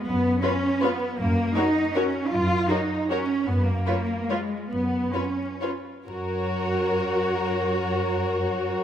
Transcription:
X:1
M:3/4
L:1/8
Q:1/4=148
K:F#
V:1 name="Violin section"
z2 c2 c2 | z2 c2 c2 | z2 c2 c2 | z2 c2 c2 |
z2 c2 c2 | c6- | c6 |]
V:2 name="Violin section"
z2 B2 B2 | z2 A2 A2 | z2 A2 A2 | z2 B2 B2 |
z2 B2 B2 | A6- | A6 |]
V:3 name="Viola section"
z2 E2 E2 | z2 F2 F2 | z2 F2 F2 | z2 E2 E2 |
z2 E2 E2 | F6- | F6 |]
V:4 name="Cello section"
B,2 C2 B,2 | A,2 D2 C2 | E2 D2 C2 | B, A,3 G,2 |
B,2 C2 z2 | F6- | F6 |]
V:5 name="Double bass section" clef=bass
F,,2 z4 | F,,2 z4 | F,,2 z4 | F,,2 z4 |
F,,2 z4 | F,,6- | F,,6 |]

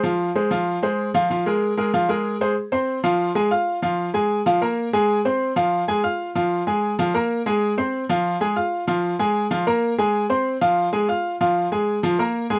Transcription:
X:1
M:4/4
L:1/8
Q:1/4=190
K:Fm
V:1 name="Upright piano"
[F,Ff]2 [A,Ac] [F,Ff]2 [A,Ac]2 [F,Ff] | [F,Ff] [A,AB]2 [A,AB] [F,Ff] [A,AB]2 [A,Ac] | z [Ccc']2 [F,Ff]2 [A,Aa] [Fff']2 | [F,Ff]2 [A,Aa]2 [F,Ff] [B,Bb]2 [A,Aa]- |
[A,Aa] [Ccc']2 [F,Ff]2 [A,Aa] [Fff']2 | [F,Ff]2 [A,Aa]2 [F,Ff] [B,Bb]2 [A,Aa]- | [A,Aa] [Ccc']2 [F,Ff]2 [A,Aa] [Fff']2 | [F,Ff]2 [A,Aa]2 [F,Ff] [B,Bb]2 [A,Aa]- |
[A,Aa] [Ccc']2 [F,Ff]2 [A,Aa] [Fff']2 | [F,Ff]2 [A,Aa]2 [F,Ff] [B,Bb]2 [A,Aa] |]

